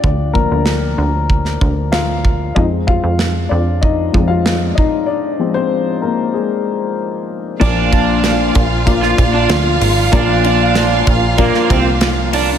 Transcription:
<<
  \new Staff \with { instrumentName = "Violin section" } { \time 4/4 \key bes \mixolydian \tempo 4 = 95 r1 | r1 | r1 | <f' f''>1~ |
<f' f''>1 | }
  \new Staff \with { instrumentName = "Overdriven electric guitar" } { \time 4/4 \key bes \mixolydian r1 | r1 | r1 | d'8 d'4 r8. f'16 r16 d'16 r4 |
d'8 d'4 r8 bes8 c'16 r8. d'16 r16 | }
  \new Staff \with { instrumentName = "Upright piano" } { \time 4/4 \key bes \mixolydian <d' d''>8 bes'2~ bes'8 <f' f''>4 | <ees' ees''>8 <f' f''>4 <d' d''>8 <ees' ees''>8. <f' f''>8. <ees' ees''>8 | <d' d''>8. <c' c''>8. <bes bes'>8 <aes aes'>4 r4 | <bes d' f' d''>4. r8 <bes d' f' d''>4. r8 |
<bes d' f' d''>4. r8 <bes d' f' d''>4. r8 | }
  \new Staff \with { instrumentName = "Upright piano" } { \clef bass \time 4/4 \key bes \mixolydian r8 <f bes d'>2.~ <f bes d'>8 | <f aes c'>2~ <f aes c'>8 <f aes c'>8 r4 | r8 <f aes c'>2.~ <f aes c'>8 | <bes, f>4. r2 r8 |
<bes, f>4. r2 r8 | }
  \new Staff \with { instrumentName = "Analog synth bass" } { \clef bass \time 4/4 \key bes \mixolydian d,8. d,8. d,4 d,4. | f,8. f,8. f,4 f,4 r8 | r1 | bes,,4. bes,,4 bes,,8 d,8 aes,,8 |
bes,,4. bes,,8. r16 c,4. | }
  \new DrumStaff \with { instrumentName = "Drums" } \drummode { \time 4/4 bd8 bd8 sn4 bd16 sn16 bd8 sn8 bd8 | bd8 bd8 sn4 bd8 bd8 sn8 bd8 | r4 r4 r4 r4 | <cymc bd>8 <bd cymr>8 <cymr sn>8 <bd cymr>8 <bd cymr>16 sn16 <bd cymr>8 <cymr sn>8 <hho cymr>8 |
<hhp bd cymr>8 cymr8 <cymr sn>8 <bd cymr>8 <bd cymr>16 sn16 <bd cymr>8 <cymr sn>8 <hho cymr>8 | }
>>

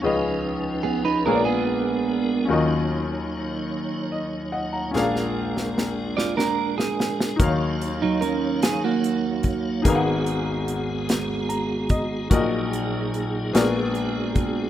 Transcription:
<<
  \new Staff \with { instrumentName = "Grand piano" } { \time 6/8 \key ees \minor \tempo 4. = 49 << { r2. | r2 ees''8 <ees'' ges''>16 <ges'' bes''>16~ | <ges'' bes''>16 r2 r8. | r2. |
r2 bes''8 ees''8 | r2. | } \\ { <des, des des' f' aes' ces'' ees''>4. <bes,, bes, ces' f' aes' bes' des'' d''>4. | <ees, ees des' f' ges' bes' ees''>2. | <bes,, bes, des' d' f' aes' bes' f''>2. | <ees, ees ees' ges' bes' des'' f''>2. |
<aes,, aes, ees' aes' bes' ces'' f'' ges''>2. | <bes,, bes, ges' bes' ees''>4. <bes,, bes, ces' ges' aes' bes' d''>4. | } >> }
  \new Staff \with { instrumentName = "Clean electric guitar" } { \time 6/8 \key ees \minor r4 <ces' aes'>16 <ees' ces''>16 <d' bes'>16 <ces' aes'>4~ <ces' aes'>16 | r2. | r4. <f' d''>16 <d' bes'>8 aes'8. | r8. <ges ees'>16 <des' bes'>8 aes'16 <bes ges'>4~ <bes ges'>16 |
r2. | r2. | }
  \new Staff \with { instrumentName = "Tonewheel organ" } { \time 6/8 \key ees \minor ces''4. bes'4. | des''2. | bes'2. | des''2. |
aes'2.~ | aes'2. | }
  \new Staff \with { instrumentName = "Tonewheel organ" } { \time 6/8 \key ees \minor <f des' ees'>4. <aes ces' d'>4. | <ges ees'>2. | <aes d'>2. | <ges ees' f''>2. |
<aes ces' ges'>2. | <bes, ges bes ees'>4. <aes ces' d' ges'>4. | }
  \new DrumStaff \with { instrumentName = "Drums" } \drummode { \time 6/8 r4. r4. | r4. r4. | sn16 sn8 sn16 sn8 sn16 sn8 sn16 sn16 sn16 | <hh bd>8 hh8 hh8 <hh sn>8 hh8 <hh bd>8 |
<hh bd>8 hh8 hh8 <hh sn>8 hh8 <hh bd>8 | <hh bd>8 hh8 hh8 <hh sn>8 hh8 <hh bd>8 | }
>>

